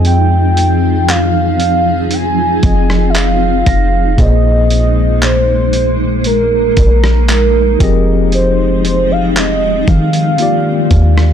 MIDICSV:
0, 0, Header, 1, 7, 480
1, 0, Start_track
1, 0, Tempo, 1034483
1, 21, Time_signature, 4, 2, 24, 8
1, 5258, End_track
2, 0, Start_track
2, 0, Title_t, "Celesta"
2, 0, Program_c, 0, 8
2, 1701, Note_on_c, 0, 94, 76
2, 2163, Note_off_c, 0, 94, 0
2, 5258, End_track
3, 0, Start_track
3, 0, Title_t, "Soft synth lead"
3, 0, Program_c, 1, 80
3, 30, Note_on_c, 1, 79, 113
3, 510, Note_on_c, 1, 77, 108
3, 517, Note_off_c, 1, 79, 0
3, 989, Note_on_c, 1, 80, 113
3, 996, Note_off_c, 1, 77, 0
3, 1438, Note_on_c, 1, 76, 79
3, 1444, Note_off_c, 1, 80, 0
3, 1468, Note_on_c, 1, 77, 107
3, 1475, Note_off_c, 1, 76, 0
3, 1949, Note_on_c, 1, 75, 106
3, 1956, Note_off_c, 1, 77, 0
3, 2430, Note_on_c, 1, 72, 105
3, 2437, Note_off_c, 1, 75, 0
3, 2906, Note_off_c, 1, 72, 0
3, 2909, Note_on_c, 1, 70, 108
3, 3847, Note_off_c, 1, 70, 0
3, 3870, Note_on_c, 1, 72, 99
3, 4231, Note_on_c, 1, 77, 92
3, 4238, Note_off_c, 1, 72, 0
3, 4353, Note_on_c, 1, 75, 97
3, 4360, Note_off_c, 1, 77, 0
3, 4587, Note_off_c, 1, 75, 0
3, 4591, Note_on_c, 1, 77, 99
3, 5258, Note_off_c, 1, 77, 0
3, 5258, End_track
4, 0, Start_track
4, 0, Title_t, "Tine electric piano"
4, 0, Program_c, 2, 4
4, 0, Control_c, 2, 64, 127
4, 0, Note_on_c, 2, 53, 71
4, 0, Note_on_c, 2, 60, 62
4, 0, Note_on_c, 2, 65, 64
4, 0, Note_on_c, 2, 68, 62
4, 0, Note_on_c, 2, 75, 76
4, 1201, Note_off_c, 2, 53, 0
4, 1203, Note_off_c, 2, 60, 0
4, 1206, Note_off_c, 2, 65, 0
4, 1209, Note_off_c, 2, 68, 0
4, 1211, Note_off_c, 2, 75, 0
4, 1221, Note_on_c, 2, 53, 54
4, 1224, Note_on_c, 2, 60, 49
4, 1226, Note_on_c, 2, 65, 48
4, 1229, Note_on_c, 2, 68, 49
4, 1231, Note_on_c, 2, 75, 61
4, 1935, Note_on_c, 2, 46, 69
4, 1940, Note_off_c, 2, 68, 0
4, 1940, Note_on_c, 2, 58, 61
4, 1941, Note_off_c, 2, 53, 0
4, 1943, Note_off_c, 2, 60, 0
4, 1944, Note_off_c, 2, 65, 0
4, 1945, Note_on_c, 2, 68, 60
4, 1946, Note_off_c, 2, 75, 0
4, 1948, Control_c, 2, 64, 0
4, 1950, Note_on_c, 2, 72, 61
4, 1955, Note_on_c, 2, 74, 60
4, 1978, Note_off_c, 2, 74, 0
4, 1985, Note_on_c, 2, 75, 74
4, 2036, Control_c, 2, 64, 127
4, 3600, Note_off_c, 2, 46, 0
4, 3602, Note_off_c, 2, 58, 0
4, 3605, Note_off_c, 2, 68, 0
4, 3607, Note_off_c, 2, 72, 0
4, 3615, Note_on_c, 2, 53, 77
4, 3620, Note_on_c, 2, 60, 74
4, 3625, Note_off_c, 2, 75, 0
4, 3625, Note_on_c, 2, 67, 70
4, 3628, Control_c, 2, 64, 0
4, 3631, Note_on_c, 2, 68, 73
4, 3636, Note_on_c, 2, 75, 92
4, 3711, Control_c, 2, 64, 127
4, 4800, Note_off_c, 2, 53, 0
4, 4802, Note_off_c, 2, 60, 0
4, 4805, Note_off_c, 2, 67, 0
4, 4808, Note_off_c, 2, 68, 0
4, 4810, Note_off_c, 2, 75, 0
4, 4816, Note_on_c, 2, 51, 68
4, 4821, Note_on_c, 2, 58, 61
4, 4826, Control_c, 2, 64, 0
4, 4827, Note_on_c, 2, 65, 66
4, 4832, Note_on_c, 2, 67, 65
4, 4837, Note_on_c, 2, 74, 73
4, 4912, Control_c, 2, 64, 127
4, 5258, Note_off_c, 2, 51, 0
4, 5258, Note_off_c, 2, 58, 0
4, 5258, Note_off_c, 2, 65, 0
4, 5258, Note_off_c, 2, 67, 0
4, 5258, Note_off_c, 2, 74, 0
4, 5258, End_track
5, 0, Start_track
5, 0, Title_t, "Ambient pad"
5, 0, Program_c, 3, 92
5, 0, Note_on_c, 3, 53, 84
5, 0, Note_on_c, 3, 60, 83
5, 0, Note_on_c, 3, 63, 75
5, 0, Note_on_c, 3, 65, 80
5, 0, Note_on_c, 3, 68, 93
5, 1923, Note_off_c, 3, 53, 0
5, 1923, Note_off_c, 3, 60, 0
5, 1923, Note_off_c, 3, 65, 0
5, 1923, Note_off_c, 3, 68, 0
5, 1940, Note_on_c, 3, 58, 73
5, 1941, Note_on_c, 3, 56, 84
5, 3603, Note_off_c, 3, 63, 0
5, 3604, Note_off_c, 3, 56, 0
5, 3604, Note_off_c, 3, 58, 0
5, 3619, Note_on_c, 3, 53, 87
5, 3619, Note_on_c, 3, 56, 93
5, 3619, Note_on_c, 3, 60, 80
5, 3619, Note_on_c, 3, 63, 76
5, 3619, Note_on_c, 3, 79, 75
5, 4808, Note_off_c, 3, 53, 0
5, 4808, Note_off_c, 3, 56, 0
5, 4808, Note_off_c, 3, 60, 0
5, 4808, Note_off_c, 3, 63, 0
5, 4820, Note_on_c, 3, 58, 82
5, 4820, Note_on_c, 3, 65, 78
5, 4821, Note_on_c, 3, 51, 90
5, 4821, Note_on_c, 3, 62, 77
5, 5258, Note_off_c, 3, 51, 0
5, 5258, Note_off_c, 3, 58, 0
5, 5258, Note_off_c, 3, 62, 0
5, 5258, Note_off_c, 3, 65, 0
5, 5258, Note_off_c, 3, 79, 0
5, 5258, End_track
6, 0, Start_track
6, 0, Title_t, "808-style bass"
6, 0, Program_c, 4, 38
6, 0, Note_on_c, 4, 41, 113
6, 1203, Note_off_c, 4, 41, 0
6, 1223, Note_on_c, 4, 29, 105
6, 1684, Note_off_c, 4, 29, 0
6, 1702, Note_on_c, 4, 29, 109
6, 1932, Note_off_c, 4, 29, 0
6, 1942, Note_on_c, 4, 34, 114
6, 3123, Note_off_c, 4, 34, 0
6, 3142, Note_on_c, 4, 34, 105
6, 3603, Note_off_c, 4, 34, 0
6, 3622, Note_on_c, 4, 29, 112
6, 4563, Note_off_c, 4, 29, 0
6, 4583, Note_on_c, 4, 51, 96
6, 5044, Note_off_c, 4, 51, 0
6, 5063, Note_on_c, 4, 39, 105
6, 5258, Note_off_c, 4, 39, 0
6, 5258, End_track
7, 0, Start_track
7, 0, Title_t, "Drums"
7, 22, Note_on_c, 9, 42, 66
7, 69, Note_off_c, 9, 42, 0
7, 265, Note_on_c, 9, 42, 78
7, 311, Note_off_c, 9, 42, 0
7, 504, Note_on_c, 9, 42, 73
7, 506, Note_on_c, 9, 39, 111
7, 550, Note_off_c, 9, 42, 0
7, 552, Note_off_c, 9, 39, 0
7, 741, Note_on_c, 9, 42, 68
7, 787, Note_off_c, 9, 42, 0
7, 977, Note_on_c, 9, 42, 67
7, 1024, Note_off_c, 9, 42, 0
7, 1219, Note_on_c, 9, 42, 63
7, 1222, Note_on_c, 9, 36, 110
7, 1266, Note_off_c, 9, 42, 0
7, 1268, Note_off_c, 9, 36, 0
7, 1345, Note_on_c, 9, 37, 102
7, 1391, Note_off_c, 9, 37, 0
7, 1459, Note_on_c, 9, 42, 81
7, 1464, Note_on_c, 9, 39, 117
7, 1506, Note_off_c, 9, 42, 0
7, 1511, Note_off_c, 9, 39, 0
7, 1700, Note_on_c, 9, 42, 81
7, 1701, Note_on_c, 9, 36, 99
7, 1746, Note_off_c, 9, 42, 0
7, 1747, Note_off_c, 9, 36, 0
7, 1940, Note_on_c, 9, 42, 59
7, 1941, Note_on_c, 9, 36, 104
7, 1987, Note_off_c, 9, 36, 0
7, 1987, Note_off_c, 9, 42, 0
7, 2183, Note_on_c, 9, 42, 80
7, 2229, Note_off_c, 9, 42, 0
7, 2422, Note_on_c, 9, 42, 74
7, 2424, Note_on_c, 9, 39, 120
7, 2468, Note_off_c, 9, 42, 0
7, 2470, Note_off_c, 9, 39, 0
7, 2659, Note_on_c, 9, 42, 66
7, 2705, Note_off_c, 9, 42, 0
7, 2897, Note_on_c, 9, 42, 68
7, 2943, Note_off_c, 9, 42, 0
7, 3140, Note_on_c, 9, 42, 68
7, 3141, Note_on_c, 9, 36, 104
7, 3186, Note_off_c, 9, 42, 0
7, 3188, Note_off_c, 9, 36, 0
7, 3265, Note_on_c, 9, 37, 98
7, 3311, Note_off_c, 9, 37, 0
7, 3380, Note_on_c, 9, 42, 84
7, 3384, Note_on_c, 9, 39, 113
7, 3426, Note_off_c, 9, 42, 0
7, 3431, Note_off_c, 9, 39, 0
7, 3621, Note_on_c, 9, 36, 117
7, 3621, Note_on_c, 9, 42, 85
7, 3667, Note_off_c, 9, 42, 0
7, 3668, Note_off_c, 9, 36, 0
7, 3861, Note_on_c, 9, 42, 62
7, 3908, Note_off_c, 9, 42, 0
7, 4105, Note_on_c, 9, 42, 75
7, 4151, Note_off_c, 9, 42, 0
7, 4343, Note_on_c, 9, 42, 75
7, 4345, Note_on_c, 9, 39, 119
7, 4390, Note_off_c, 9, 42, 0
7, 4391, Note_off_c, 9, 39, 0
7, 4582, Note_on_c, 9, 42, 41
7, 4583, Note_on_c, 9, 36, 100
7, 4629, Note_off_c, 9, 36, 0
7, 4629, Note_off_c, 9, 42, 0
7, 4702, Note_on_c, 9, 42, 69
7, 4748, Note_off_c, 9, 42, 0
7, 4818, Note_on_c, 9, 42, 69
7, 4864, Note_off_c, 9, 42, 0
7, 5061, Note_on_c, 9, 42, 68
7, 5062, Note_on_c, 9, 36, 103
7, 5107, Note_off_c, 9, 42, 0
7, 5108, Note_off_c, 9, 36, 0
7, 5185, Note_on_c, 9, 37, 107
7, 5232, Note_off_c, 9, 37, 0
7, 5258, End_track
0, 0, End_of_file